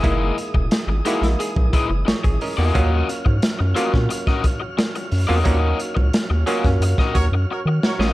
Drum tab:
HH |x-x-x-xxx-x-xxo-|x-x-x-x-x-x-xxo-|x-x-x-xxx-x-----|
SD |----o--o----o---|----o--o-o--o---|----o--o-o----oo|
BD |o--o-----oo--o--|o--o---o-oo-----|o--o---o-oo-----|